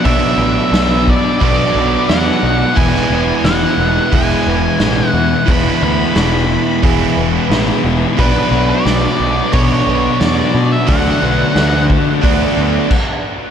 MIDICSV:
0, 0, Header, 1, 7, 480
1, 0, Start_track
1, 0, Tempo, 676437
1, 35, Time_signature, 4, 2, 24, 8
1, 9583, End_track
2, 0, Start_track
2, 0, Title_t, "Lead electric guitar"
2, 0, Program_c, 0, 29
2, 37, Note_on_c, 0, 76, 91
2, 778, Note_on_c, 0, 74, 88
2, 780, Note_off_c, 0, 76, 0
2, 1016, Note_off_c, 0, 74, 0
2, 1027, Note_on_c, 0, 74, 84
2, 1485, Note_on_c, 0, 78, 94
2, 1508, Note_off_c, 0, 74, 0
2, 1962, Note_on_c, 0, 80, 106
2, 1978, Note_off_c, 0, 78, 0
2, 2448, Note_on_c, 0, 78, 86
2, 2457, Note_off_c, 0, 80, 0
2, 2940, Note_off_c, 0, 78, 0
2, 2945, Note_on_c, 0, 80, 103
2, 3605, Note_off_c, 0, 80, 0
2, 3605, Note_on_c, 0, 78, 103
2, 3911, Note_off_c, 0, 78, 0
2, 3914, Note_on_c, 0, 83, 97
2, 4134, Note_off_c, 0, 83, 0
2, 4142, Note_on_c, 0, 83, 90
2, 4824, Note_off_c, 0, 83, 0
2, 5814, Note_on_c, 0, 71, 81
2, 6172, Note_off_c, 0, 71, 0
2, 6175, Note_on_c, 0, 74, 74
2, 6762, Note_off_c, 0, 74, 0
2, 6765, Note_on_c, 0, 73, 89
2, 7234, Note_off_c, 0, 73, 0
2, 7237, Note_on_c, 0, 74, 82
2, 7608, Note_off_c, 0, 74, 0
2, 7608, Note_on_c, 0, 76, 80
2, 7721, Note_off_c, 0, 76, 0
2, 7724, Note_on_c, 0, 78, 94
2, 8411, Note_off_c, 0, 78, 0
2, 9583, End_track
3, 0, Start_track
3, 0, Title_t, "Clean electric guitar"
3, 0, Program_c, 1, 27
3, 0, Note_on_c, 1, 59, 65
3, 0, Note_on_c, 1, 62, 74
3, 0, Note_on_c, 1, 69, 82
3, 44, Note_on_c, 1, 54, 72
3, 273, Note_off_c, 1, 59, 0
3, 276, Note_on_c, 1, 59, 53
3, 279, Note_off_c, 1, 69, 0
3, 510, Note_off_c, 1, 54, 0
3, 519, Note_on_c, 1, 54, 64
3, 755, Note_off_c, 1, 62, 0
3, 764, Note_on_c, 1, 62, 65
3, 1001, Note_on_c, 1, 69, 70
3, 1241, Note_off_c, 1, 59, 0
3, 1243, Note_on_c, 1, 59, 64
3, 1476, Note_off_c, 1, 54, 0
3, 1485, Note_on_c, 1, 54, 60
3, 1719, Note_off_c, 1, 62, 0
3, 1727, Note_on_c, 1, 62, 63
3, 1962, Note_off_c, 1, 69, 0
3, 1964, Note_off_c, 1, 54, 0
3, 1964, Note_off_c, 1, 59, 0
3, 1965, Note_off_c, 1, 62, 0
3, 1967, Note_on_c, 1, 59, 77
3, 2198, Note_off_c, 1, 59, 0
3, 2201, Note_on_c, 1, 59, 60
3, 2441, Note_off_c, 1, 59, 0
3, 2444, Note_on_c, 1, 59, 63
3, 2693, Note_on_c, 1, 64, 70
3, 2928, Note_on_c, 1, 68, 72
3, 3168, Note_off_c, 1, 59, 0
3, 3171, Note_on_c, 1, 59, 71
3, 3407, Note_off_c, 1, 59, 0
3, 3410, Note_on_c, 1, 59, 69
3, 3647, Note_off_c, 1, 64, 0
3, 3655, Note_on_c, 1, 64, 67
3, 3894, Note_off_c, 1, 59, 0
3, 3897, Note_on_c, 1, 59, 75
3, 4126, Note_off_c, 1, 68, 0
3, 4132, Note_off_c, 1, 59, 0
3, 4134, Note_on_c, 1, 59, 66
3, 4370, Note_off_c, 1, 59, 0
3, 4373, Note_on_c, 1, 59, 70
3, 4606, Note_off_c, 1, 64, 0
3, 4614, Note_on_c, 1, 64, 72
3, 4850, Note_on_c, 1, 68, 73
3, 5085, Note_off_c, 1, 59, 0
3, 5088, Note_on_c, 1, 59, 73
3, 5320, Note_off_c, 1, 59, 0
3, 5323, Note_on_c, 1, 59, 69
3, 5553, Note_off_c, 1, 64, 0
3, 5561, Note_on_c, 1, 64, 73
3, 5802, Note_off_c, 1, 64, 0
3, 5806, Note_off_c, 1, 68, 0
3, 5807, Note_on_c, 1, 54, 74
3, 6042, Note_off_c, 1, 59, 0
3, 6045, Note_on_c, 1, 59, 61
3, 6276, Note_off_c, 1, 54, 0
3, 6279, Note_on_c, 1, 54, 66
3, 6515, Note_on_c, 1, 62, 68
3, 6758, Note_on_c, 1, 69, 76
3, 6991, Note_off_c, 1, 59, 0
3, 6999, Note_on_c, 1, 59, 70
3, 7226, Note_off_c, 1, 54, 0
3, 7234, Note_on_c, 1, 54, 66
3, 7467, Note_off_c, 1, 62, 0
3, 7476, Note_on_c, 1, 62, 65
3, 7704, Note_off_c, 1, 54, 0
3, 7713, Note_on_c, 1, 54, 79
3, 7717, Note_off_c, 1, 62, 0
3, 7717, Note_off_c, 1, 69, 0
3, 7718, Note_off_c, 1, 59, 0
3, 7956, Note_on_c, 1, 59, 63
3, 8189, Note_off_c, 1, 54, 0
3, 8197, Note_on_c, 1, 54, 65
3, 8438, Note_on_c, 1, 62, 67
3, 8674, Note_on_c, 1, 69, 73
3, 8913, Note_off_c, 1, 59, 0
3, 8921, Note_on_c, 1, 59, 67
3, 9154, Note_off_c, 1, 54, 0
3, 9154, Note_off_c, 1, 69, 0
3, 9155, Note_off_c, 1, 62, 0
3, 9157, Note_off_c, 1, 59, 0
3, 9583, End_track
4, 0, Start_track
4, 0, Title_t, "Overdriven electric guitar"
4, 0, Program_c, 2, 29
4, 53, Note_on_c, 2, 62, 94
4, 993, Note_off_c, 2, 62, 0
4, 1014, Note_on_c, 2, 62, 81
4, 1954, Note_off_c, 2, 62, 0
4, 1961, Note_on_c, 2, 56, 75
4, 1972, Note_on_c, 2, 59, 92
4, 1979, Note_on_c, 2, 64, 95
4, 2920, Note_on_c, 2, 52, 76
4, 2925, Note_off_c, 2, 56, 0
4, 2928, Note_on_c, 2, 56, 71
4, 2933, Note_off_c, 2, 59, 0
4, 2936, Note_on_c, 2, 59, 68
4, 2937, Note_off_c, 2, 64, 0
4, 2940, Note_on_c, 2, 64, 80
4, 3864, Note_off_c, 2, 52, 0
4, 3872, Note_off_c, 2, 56, 0
4, 3872, Note_on_c, 2, 52, 85
4, 3878, Note_off_c, 2, 64, 0
4, 3888, Note_off_c, 2, 59, 0
4, 3888, Note_on_c, 2, 56, 81
4, 3891, Note_on_c, 2, 59, 99
4, 3901, Note_on_c, 2, 64, 91
4, 4823, Note_off_c, 2, 52, 0
4, 4831, Note_off_c, 2, 56, 0
4, 4838, Note_off_c, 2, 64, 0
4, 4848, Note_on_c, 2, 56, 68
4, 4852, Note_off_c, 2, 59, 0
4, 4855, Note_on_c, 2, 59, 75
4, 4864, Note_on_c, 2, 64, 85
4, 5791, Note_off_c, 2, 56, 0
4, 5799, Note_off_c, 2, 64, 0
4, 5811, Note_off_c, 2, 59, 0
4, 5819, Note_on_c, 2, 62, 91
4, 6778, Note_off_c, 2, 62, 0
4, 6781, Note_on_c, 2, 62, 73
4, 7715, Note_off_c, 2, 62, 0
4, 7716, Note_on_c, 2, 54, 78
4, 8660, Note_off_c, 2, 54, 0
4, 8674, Note_on_c, 2, 54, 69
4, 9139, Note_off_c, 2, 54, 0
4, 9583, End_track
5, 0, Start_track
5, 0, Title_t, "Distorted electric guitar"
5, 0, Program_c, 3, 30
5, 30, Note_on_c, 3, 47, 76
5, 37, Note_on_c, 3, 54, 90
5, 48, Note_on_c, 3, 59, 105
5, 269, Note_off_c, 3, 59, 0
5, 272, Note_on_c, 3, 59, 77
5, 283, Note_off_c, 3, 54, 0
5, 292, Note_on_c, 3, 54, 58
5, 506, Note_off_c, 3, 47, 0
5, 514, Note_on_c, 3, 47, 75
5, 515, Note_off_c, 3, 54, 0
5, 524, Note_on_c, 3, 54, 78
5, 532, Note_off_c, 3, 59, 0
5, 535, Note_on_c, 3, 59, 78
5, 993, Note_off_c, 3, 47, 0
5, 1001, Note_on_c, 3, 47, 89
5, 1003, Note_off_c, 3, 54, 0
5, 1012, Note_on_c, 3, 54, 99
5, 1015, Note_off_c, 3, 59, 0
5, 1017, Note_on_c, 3, 59, 90
5, 1469, Note_off_c, 3, 47, 0
5, 1478, Note_on_c, 3, 47, 63
5, 1482, Note_off_c, 3, 54, 0
5, 1491, Note_on_c, 3, 54, 65
5, 1495, Note_off_c, 3, 59, 0
5, 1498, Note_on_c, 3, 59, 82
5, 1946, Note_off_c, 3, 47, 0
5, 1952, Note_off_c, 3, 54, 0
5, 1957, Note_on_c, 3, 40, 78
5, 1967, Note_on_c, 3, 47, 100
5, 1980, Note_on_c, 3, 52, 97
5, 2202, Note_off_c, 3, 52, 0
5, 2205, Note_on_c, 3, 52, 81
5, 2208, Note_off_c, 3, 47, 0
5, 2217, Note_on_c, 3, 47, 61
5, 2440, Note_off_c, 3, 40, 0
5, 2443, Note_on_c, 3, 40, 65
5, 2448, Note_off_c, 3, 47, 0
5, 2457, Note_on_c, 3, 47, 76
5, 2463, Note_off_c, 3, 52, 0
5, 2466, Note_on_c, 3, 52, 77
5, 2920, Note_off_c, 3, 40, 0
5, 2929, Note_on_c, 3, 40, 90
5, 2932, Note_off_c, 3, 47, 0
5, 2940, Note_off_c, 3, 52, 0
5, 2940, Note_on_c, 3, 47, 88
5, 2948, Note_on_c, 3, 52, 95
5, 3390, Note_off_c, 3, 40, 0
5, 3399, Note_on_c, 3, 40, 71
5, 3405, Note_off_c, 3, 47, 0
5, 3411, Note_off_c, 3, 52, 0
5, 3414, Note_on_c, 3, 47, 73
5, 3419, Note_on_c, 3, 52, 70
5, 3872, Note_off_c, 3, 40, 0
5, 3881, Note_on_c, 3, 40, 81
5, 3884, Note_off_c, 3, 47, 0
5, 3892, Note_off_c, 3, 52, 0
5, 3893, Note_on_c, 3, 47, 92
5, 3901, Note_on_c, 3, 52, 100
5, 3982, Note_off_c, 3, 59, 0
5, 4116, Note_off_c, 3, 52, 0
5, 4125, Note_on_c, 3, 52, 72
5, 4132, Note_off_c, 3, 47, 0
5, 4141, Note_on_c, 3, 47, 64
5, 4351, Note_off_c, 3, 40, 0
5, 4360, Note_on_c, 3, 40, 69
5, 4361, Note_off_c, 3, 47, 0
5, 4366, Note_off_c, 3, 52, 0
5, 4370, Note_on_c, 3, 47, 81
5, 4375, Note_on_c, 3, 52, 85
5, 4834, Note_off_c, 3, 40, 0
5, 4842, Note_on_c, 3, 40, 97
5, 4843, Note_off_c, 3, 47, 0
5, 4851, Note_off_c, 3, 52, 0
5, 4852, Note_on_c, 3, 47, 96
5, 4859, Note_on_c, 3, 52, 104
5, 5306, Note_off_c, 3, 40, 0
5, 5314, Note_on_c, 3, 40, 68
5, 5317, Note_off_c, 3, 47, 0
5, 5325, Note_off_c, 3, 52, 0
5, 5326, Note_on_c, 3, 47, 77
5, 5333, Note_on_c, 3, 52, 71
5, 5784, Note_off_c, 3, 40, 0
5, 5785, Note_off_c, 3, 47, 0
5, 5793, Note_off_c, 3, 52, 0
5, 5793, Note_on_c, 3, 47, 89
5, 5808, Note_on_c, 3, 54, 86
5, 5814, Note_on_c, 3, 59, 91
5, 6033, Note_off_c, 3, 59, 0
5, 6036, Note_on_c, 3, 59, 83
5, 6050, Note_off_c, 3, 54, 0
5, 6053, Note_on_c, 3, 54, 56
5, 6265, Note_off_c, 3, 47, 0
5, 6273, Note_on_c, 3, 47, 75
5, 6283, Note_off_c, 3, 54, 0
5, 6286, Note_on_c, 3, 54, 78
5, 6288, Note_off_c, 3, 59, 0
5, 6291, Note_on_c, 3, 59, 74
5, 6749, Note_off_c, 3, 47, 0
5, 6757, Note_on_c, 3, 47, 100
5, 6760, Note_off_c, 3, 54, 0
5, 6761, Note_off_c, 3, 59, 0
5, 6763, Note_on_c, 3, 54, 98
5, 6770, Note_on_c, 3, 59, 107
5, 7227, Note_off_c, 3, 47, 0
5, 7236, Note_on_c, 3, 47, 72
5, 7240, Note_off_c, 3, 54, 0
5, 7244, Note_off_c, 3, 59, 0
5, 7248, Note_on_c, 3, 54, 71
5, 7253, Note_on_c, 3, 59, 74
5, 7703, Note_off_c, 3, 47, 0
5, 7709, Note_off_c, 3, 54, 0
5, 7711, Note_off_c, 3, 59, 0
5, 7711, Note_on_c, 3, 50, 85
5, 7716, Note_on_c, 3, 57, 89
5, 7728, Note_on_c, 3, 62, 92
5, 7943, Note_off_c, 3, 62, 0
5, 7951, Note_on_c, 3, 62, 77
5, 7964, Note_off_c, 3, 57, 0
5, 7973, Note_on_c, 3, 57, 68
5, 8178, Note_off_c, 3, 50, 0
5, 8187, Note_on_c, 3, 50, 74
5, 8193, Note_off_c, 3, 57, 0
5, 8193, Note_off_c, 3, 62, 0
5, 8201, Note_on_c, 3, 57, 71
5, 8202, Note_on_c, 3, 62, 82
5, 8659, Note_off_c, 3, 50, 0
5, 8668, Note_on_c, 3, 50, 85
5, 8669, Note_off_c, 3, 57, 0
5, 8674, Note_off_c, 3, 62, 0
5, 8678, Note_on_c, 3, 57, 92
5, 8682, Note_on_c, 3, 62, 106
5, 9136, Note_off_c, 3, 50, 0
5, 9141, Note_off_c, 3, 57, 0
5, 9143, Note_off_c, 3, 62, 0
5, 9583, End_track
6, 0, Start_track
6, 0, Title_t, "Picked electric bass"
6, 0, Program_c, 4, 34
6, 40, Note_on_c, 4, 35, 87
6, 184, Note_off_c, 4, 35, 0
6, 269, Note_on_c, 4, 33, 90
6, 416, Note_off_c, 4, 33, 0
6, 509, Note_on_c, 4, 35, 82
6, 802, Note_off_c, 4, 35, 0
6, 1006, Note_on_c, 4, 35, 81
6, 1149, Note_off_c, 4, 35, 0
6, 1246, Note_on_c, 4, 35, 79
6, 1389, Note_off_c, 4, 35, 0
6, 1485, Note_on_c, 4, 40, 78
6, 1629, Note_off_c, 4, 40, 0
6, 1725, Note_on_c, 4, 35, 79
6, 1868, Note_off_c, 4, 35, 0
6, 1968, Note_on_c, 4, 28, 82
6, 2111, Note_off_c, 4, 28, 0
6, 2200, Note_on_c, 4, 28, 82
6, 2346, Note_off_c, 4, 28, 0
6, 2440, Note_on_c, 4, 28, 86
6, 2586, Note_off_c, 4, 28, 0
6, 2681, Note_on_c, 4, 28, 71
6, 2826, Note_off_c, 4, 28, 0
6, 2929, Note_on_c, 4, 28, 84
6, 3072, Note_off_c, 4, 28, 0
6, 3167, Note_on_c, 4, 28, 79
6, 3311, Note_off_c, 4, 28, 0
6, 3408, Note_on_c, 4, 33, 81
6, 3552, Note_off_c, 4, 33, 0
6, 3643, Note_on_c, 4, 40, 79
6, 3788, Note_off_c, 4, 40, 0
6, 3889, Note_on_c, 4, 28, 88
6, 4032, Note_off_c, 4, 28, 0
6, 4127, Note_on_c, 4, 38, 89
6, 4271, Note_off_c, 4, 38, 0
6, 4369, Note_on_c, 4, 28, 96
6, 4657, Note_off_c, 4, 28, 0
6, 4850, Note_on_c, 4, 28, 83
6, 4993, Note_off_c, 4, 28, 0
6, 5089, Note_on_c, 4, 28, 81
6, 5232, Note_off_c, 4, 28, 0
6, 5321, Note_on_c, 4, 33, 85
6, 5466, Note_off_c, 4, 33, 0
6, 5566, Note_on_c, 4, 28, 76
6, 5710, Note_off_c, 4, 28, 0
6, 5811, Note_on_c, 4, 35, 88
6, 5953, Note_off_c, 4, 35, 0
6, 6039, Note_on_c, 4, 35, 84
6, 6185, Note_off_c, 4, 35, 0
6, 6284, Note_on_c, 4, 35, 83
6, 6428, Note_off_c, 4, 35, 0
6, 6529, Note_on_c, 4, 35, 71
6, 6671, Note_off_c, 4, 35, 0
6, 6768, Note_on_c, 4, 35, 88
6, 6911, Note_off_c, 4, 35, 0
6, 7007, Note_on_c, 4, 35, 83
6, 7149, Note_off_c, 4, 35, 0
6, 7244, Note_on_c, 4, 40, 77
6, 7387, Note_off_c, 4, 40, 0
6, 7484, Note_on_c, 4, 47, 81
6, 7627, Note_off_c, 4, 47, 0
6, 7726, Note_on_c, 4, 38, 85
6, 7868, Note_off_c, 4, 38, 0
6, 7962, Note_on_c, 4, 35, 82
6, 8105, Note_off_c, 4, 35, 0
6, 8200, Note_on_c, 4, 38, 85
6, 8488, Note_off_c, 4, 38, 0
6, 8684, Note_on_c, 4, 38, 86
6, 8826, Note_off_c, 4, 38, 0
6, 8924, Note_on_c, 4, 38, 76
6, 9065, Note_off_c, 4, 38, 0
6, 9583, End_track
7, 0, Start_track
7, 0, Title_t, "Drums"
7, 36, Note_on_c, 9, 46, 55
7, 38, Note_on_c, 9, 36, 105
7, 107, Note_off_c, 9, 46, 0
7, 109, Note_off_c, 9, 36, 0
7, 523, Note_on_c, 9, 46, 55
7, 525, Note_on_c, 9, 38, 103
7, 594, Note_off_c, 9, 46, 0
7, 596, Note_off_c, 9, 38, 0
7, 764, Note_on_c, 9, 36, 73
7, 835, Note_off_c, 9, 36, 0
7, 1004, Note_on_c, 9, 36, 107
7, 1005, Note_on_c, 9, 46, 55
7, 1075, Note_off_c, 9, 36, 0
7, 1076, Note_off_c, 9, 46, 0
7, 1485, Note_on_c, 9, 46, 49
7, 1487, Note_on_c, 9, 38, 101
7, 1556, Note_off_c, 9, 46, 0
7, 1558, Note_off_c, 9, 38, 0
7, 1966, Note_on_c, 9, 46, 51
7, 1967, Note_on_c, 9, 36, 108
7, 2037, Note_off_c, 9, 46, 0
7, 2038, Note_off_c, 9, 36, 0
7, 2090, Note_on_c, 9, 38, 30
7, 2161, Note_off_c, 9, 38, 0
7, 2446, Note_on_c, 9, 46, 54
7, 2448, Note_on_c, 9, 38, 103
7, 2517, Note_off_c, 9, 46, 0
7, 2519, Note_off_c, 9, 38, 0
7, 2927, Note_on_c, 9, 46, 59
7, 2929, Note_on_c, 9, 36, 102
7, 2998, Note_off_c, 9, 46, 0
7, 3000, Note_off_c, 9, 36, 0
7, 3404, Note_on_c, 9, 46, 48
7, 3406, Note_on_c, 9, 38, 97
7, 3475, Note_off_c, 9, 46, 0
7, 3477, Note_off_c, 9, 38, 0
7, 3886, Note_on_c, 9, 46, 57
7, 3890, Note_on_c, 9, 36, 108
7, 3957, Note_off_c, 9, 46, 0
7, 3960, Note_off_c, 9, 36, 0
7, 4369, Note_on_c, 9, 46, 56
7, 4371, Note_on_c, 9, 38, 102
7, 4440, Note_off_c, 9, 46, 0
7, 4442, Note_off_c, 9, 38, 0
7, 4849, Note_on_c, 9, 46, 58
7, 4850, Note_on_c, 9, 36, 106
7, 4920, Note_off_c, 9, 46, 0
7, 4921, Note_off_c, 9, 36, 0
7, 5331, Note_on_c, 9, 46, 52
7, 5333, Note_on_c, 9, 38, 101
7, 5402, Note_off_c, 9, 46, 0
7, 5404, Note_off_c, 9, 38, 0
7, 5809, Note_on_c, 9, 46, 56
7, 5810, Note_on_c, 9, 36, 114
7, 5880, Note_off_c, 9, 46, 0
7, 5881, Note_off_c, 9, 36, 0
7, 6289, Note_on_c, 9, 46, 51
7, 6291, Note_on_c, 9, 38, 98
7, 6360, Note_off_c, 9, 46, 0
7, 6362, Note_off_c, 9, 38, 0
7, 6760, Note_on_c, 9, 46, 56
7, 6766, Note_on_c, 9, 36, 113
7, 6831, Note_off_c, 9, 46, 0
7, 6837, Note_off_c, 9, 36, 0
7, 7243, Note_on_c, 9, 46, 53
7, 7245, Note_on_c, 9, 38, 97
7, 7314, Note_off_c, 9, 46, 0
7, 7316, Note_off_c, 9, 38, 0
7, 7720, Note_on_c, 9, 46, 61
7, 7725, Note_on_c, 9, 36, 105
7, 7791, Note_off_c, 9, 46, 0
7, 7796, Note_off_c, 9, 36, 0
7, 8202, Note_on_c, 9, 46, 52
7, 8204, Note_on_c, 9, 38, 104
7, 8273, Note_off_c, 9, 46, 0
7, 8275, Note_off_c, 9, 38, 0
7, 8444, Note_on_c, 9, 36, 81
7, 8515, Note_off_c, 9, 36, 0
7, 8682, Note_on_c, 9, 36, 98
7, 8683, Note_on_c, 9, 46, 55
7, 8753, Note_off_c, 9, 36, 0
7, 8754, Note_off_c, 9, 46, 0
7, 9159, Note_on_c, 9, 49, 95
7, 9160, Note_on_c, 9, 36, 97
7, 9230, Note_off_c, 9, 49, 0
7, 9231, Note_off_c, 9, 36, 0
7, 9583, End_track
0, 0, End_of_file